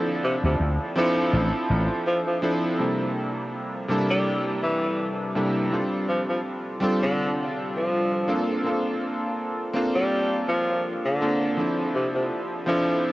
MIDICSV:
0, 0, Header, 1, 4, 480
1, 0, Start_track
1, 0, Tempo, 731707
1, 1837, Time_signature, 4, 2, 24, 8
1, 8607, End_track
2, 0, Start_track
2, 0, Title_t, "Electric grand piano"
2, 0, Program_c, 0, 2
2, 0, Note_on_c, 0, 53, 80
2, 0, Note_on_c, 0, 60, 71
2, 0, Note_on_c, 0, 62, 73
2, 0, Note_on_c, 0, 64, 74
2, 0, Note_on_c, 0, 69, 86
2, 28, Control_c, 0, 64, 127
2, 607, Note_off_c, 0, 53, 0
2, 609, Note_off_c, 0, 60, 0
2, 611, Note_off_c, 0, 62, 0
2, 614, Note_off_c, 0, 64, 0
2, 616, Note_off_c, 0, 69, 0
2, 627, Note_on_c, 0, 53, 93
2, 629, Note_on_c, 0, 60, 89
2, 635, Note_on_c, 0, 62, 84
2, 640, Note_on_c, 0, 64, 90
2, 645, Note_on_c, 0, 69, 107
2, 1566, Note_off_c, 0, 53, 0
2, 1567, Note_off_c, 0, 60, 0
2, 1570, Note_off_c, 0, 62, 0
2, 1573, Note_off_c, 0, 64, 0
2, 1575, Note_off_c, 0, 69, 0
2, 1588, Note_on_c, 0, 53, 85
2, 1590, Note_on_c, 0, 60, 81
2, 1593, Note_on_c, 0, 62, 79
2, 1595, Note_on_c, 0, 64, 82
2, 1598, Note_on_c, 0, 69, 95
2, 1807, Note_off_c, 0, 53, 0
2, 1808, Note_off_c, 0, 60, 0
2, 1809, Note_off_c, 0, 62, 0
2, 1810, Note_off_c, 0, 64, 0
2, 1812, Note_off_c, 0, 69, 0
2, 1824, Note_on_c, 0, 48, 68
2, 1828, Note_on_c, 0, 55, 65
2, 1833, Note_on_c, 0, 58, 61
2, 1836, Note_on_c, 0, 62, 65
2, 1840, Note_on_c, 0, 64, 61
2, 1843, Note_on_c, 0, 69, 77
2, 1847, Control_c, 0, 64, 0
2, 1942, Control_c, 0, 64, 127
2, 2525, Note_off_c, 0, 48, 0
2, 2527, Note_off_c, 0, 55, 0
2, 2529, Note_off_c, 0, 58, 0
2, 2531, Note_off_c, 0, 62, 0
2, 2533, Note_off_c, 0, 64, 0
2, 2534, Note_off_c, 0, 69, 0
2, 2546, Note_on_c, 0, 48, 84
2, 2551, Note_on_c, 0, 55, 81
2, 2554, Note_on_c, 0, 58, 77
2, 2558, Note_on_c, 0, 62, 78
2, 2561, Note_on_c, 0, 64, 78
2, 2566, Note_on_c, 0, 69, 97
2, 3486, Note_off_c, 0, 48, 0
2, 3488, Note_off_c, 0, 55, 0
2, 3490, Note_off_c, 0, 58, 0
2, 3492, Note_off_c, 0, 62, 0
2, 3493, Note_off_c, 0, 64, 0
2, 3496, Note_off_c, 0, 69, 0
2, 3510, Note_on_c, 0, 48, 80
2, 3512, Note_on_c, 0, 55, 68
2, 3513, Note_on_c, 0, 58, 72
2, 3516, Note_on_c, 0, 62, 68
2, 3517, Note_on_c, 0, 64, 74
2, 3519, Note_on_c, 0, 69, 82
2, 3728, Note_off_c, 0, 48, 0
2, 3729, Note_off_c, 0, 55, 0
2, 3729, Note_off_c, 0, 58, 0
2, 3731, Note_off_c, 0, 62, 0
2, 3731, Note_off_c, 0, 64, 0
2, 3732, Note_off_c, 0, 69, 0
2, 3744, Note_on_c, 0, 55, 72
2, 3749, Note_on_c, 0, 60, 64
2, 3754, Note_on_c, 0, 62, 65
2, 3759, Note_on_c, 0, 65, 66
2, 3763, Note_on_c, 0, 69, 80
2, 3767, Control_c, 0, 64, 0
2, 3899, Control_c, 0, 64, 127
2, 4445, Note_off_c, 0, 55, 0
2, 4447, Note_off_c, 0, 60, 0
2, 4450, Note_off_c, 0, 62, 0
2, 4452, Note_off_c, 0, 65, 0
2, 4454, Note_off_c, 0, 69, 0
2, 4463, Note_on_c, 0, 55, 92
2, 4468, Note_on_c, 0, 60, 81
2, 4474, Note_on_c, 0, 62, 81
2, 4478, Note_on_c, 0, 65, 81
2, 4484, Note_on_c, 0, 69, 96
2, 5404, Note_off_c, 0, 55, 0
2, 5407, Note_off_c, 0, 60, 0
2, 5410, Note_off_c, 0, 62, 0
2, 5412, Note_off_c, 0, 65, 0
2, 5415, Note_off_c, 0, 69, 0
2, 5430, Note_on_c, 0, 58, 77
2, 5431, Note_on_c, 0, 60, 73
2, 5434, Note_on_c, 0, 62, 71
2, 5436, Note_on_c, 0, 65, 74
2, 5439, Note_on_c, 0, 69, 86
2, 5446, Control_c, 0, 64, 0
2, 5575, Control_c, 0, 64, 127
2, 5648, Note_off_c, 0, 58, 0
2, 5648, Note_off_c, 0, 60, 0
2, 5650, Note_off_c, 0, 62, 0
2, 5651, Note_off_c, 0, 65, 0
2, 5652, Note_off_c, 0, 69, 0
2, 5666, Note_on_c, 0, 58, 72
2, 5671, Note_on_c, 0, 60, 65
2, 5676, Note_on_c, 0, 62, 67
2, 5681, Note_on_c, 0, 65, 66
2, 5685, Note_on_c, 0, 69, 77
2, 6366, Note_off_c, 0, 58, 0
2, 6368, Note_off_c, 0, 60, 0
2, 6371, Note_off_c, 0, 62, 0
2, 6373, Note_off_c, 0, 65, 0
2, 6375, Note_off_c, 0, 69, 0
2, 6386, Note_on_c, 0, 58, 89
2, 6389, Note_on_c, 0, 60, 82
2, 6396, Note_on_c, 0, 62, 79
2, 6400, Note_on_c, 0, 65, 81
2, 6405, Note_on_c, 0, 69, 94
2, 7326, Note_off_c, 0, 58, 0
2, 7327, Note_off_c, 0, 60, 0
2, 7331, Note_off_c, 0, 62, 0
2, 7333, Note_off_c, 0, 65, 0
2, 7335, Note_off_c, 0, 69, 0
2, 7352, Note_on_c, 0, 58, 80
2, 7354, Note_on_c, 0, 60, 73
2, 7357, Note_on_c, 0, 62, 74
2, 7358, Note_on_c, 0, 65, 75
2, 7362, Note_on_c, 0, 69, 88
2, 7569, Note_off_c, 0, 58, 0
2, 7570, Note_off_c, 0, 60, 0
2, 7571, Note_off_c, 0, 62, 0
2, 7572, Note_off_c, 0, 65, 0
2, 7574, Note_off_c, 0, 69, 0
2, 7588, Note_on_c, 0, 53, 77
2, 7593, Note_on_c, 0, 60, 66
2, 7597, Note_on_c, 0, 62, 70
2, 7602, Note_on_c, 0, 64, 66
2, 7604, Control_c, 0, 64, 0
2, 7608, Note_on_c, 0, 69, 80
2, 7717, Control_c, 0, 64, 127
2, 8287, Note_off_c, 0, 53, 0
2, 8289, Note_off_c, 0, 60, 0
2, 8291, Note_off_c, 0, 62, 0
2, 8294, Note_off_c, 0, 64, 0
2, 8297, Note_off_c, 0, 69, 0
2, 8306, Note_on_c, 0, 53, 89
2, 8310, Note_on_c, 0, 60, 84
2, 8316, Note_on_c, 0, 62, 84
2, 8321, Note_on_c, 0, 64, 85
2, 8327, Note_on_c, 0, 69, 101
2, 8607, Note_off_c, 0, 53, 0
2, 8607, Note_off_c, 0, 60, 0
2, 8607, Note_off_c, 0, 62, 0
2, 8607, Note_off_c, 0, 64, 0
2, 8607, Note_off_c, 0, 69, 0
2, 8607, End_track
3, 0, Start_track
3, 0, Title_t, "Tenor saxophone"
3, 0, Program_c, 1, 66
3, 158, Note_on_c, 1, 48, 91
3, 242, Note_off_c, 1, 48, 0
3, 293, Note_on_c, 1, 48, 76
3, 361, Note_off_c, 1, 48, 0
3, 640, Note_on_c, 1, 53, 94
3, 931, Note_off_c, 1, 53, 0
3, 1358, Note_on_c, 1, 53, 85
3, 1442, Note_off_c, 1, 53, 0
3, 1491, Note_on_c, 1, 53, 76
3, 1559, Note_off_c, 1, 53, 0
3, 2689, Note_on_c, 1, 55, 89
3, 2973, Note_off_c, 1, 55, 0
3, 3034, Note_on_c, 1, 52, 86
3, 3329, Note_off_c, 1, 52, 0
3, 3993, Note_on_c, 1, 53, 79
3, 4079, Note_off_c, 1, 53, 0
3, 4127, Note_on_c, 1, 53, 67
3, 4197, Note_off_c, 1, 53, 0
3, 4609, Note_on_c, 1, 50, 90
3, 4892, Note_off_c, 1, 50, 0
3, 5089, Note_on_c, 1, 53, 92
3, 5490, Note_off_c, 1, 53, 0
3, 6529, Note_on_c, 1, 55, 91
3, 6812, Note_off_c, 1, 55, 0
3, 6879, Note_on_c, 1, 53, 88
3, 7171, Note_off_c, 1, 53, 0
3, 7250, Note_on_c, 1, 50, 90
3, 7651, Note_off_c, 1, 50, 0
3, 7839, Note_on_c, 1, 48, 85
3, 7923, Note_off_c, 1, 48, 0
3, 7969, Note_on_c, 1, 48, 69
3, 8039, Note_off_c, 1, 48, 0
3, 8319, Note_on_c, 1, 53, 89
3, 8607, Note_off_c, 1, 53, 0
3, 8607, End_track
4, 0, Start_track
4, 0, Title_t, "Slap bass"
4, 0, Program_c, 2, 36
4, 287, Note_on_c, 2, 38, 104
4, 377, Note_off_c, 2, 38, 0
4, 393, Note_on_c, 2, 38, 88
4, 504, Note_off_c, 2, 38, 0
4, 872, Note_on_c, 2, 33, 87
4, 983, Note_off_c, 2, 33, 0
4, 1114, Note_on_c, 2, 33, 88
4, 1224, Note_off_c, 2, 33, 0
4, 8607, End_track
0, 0, End_of_file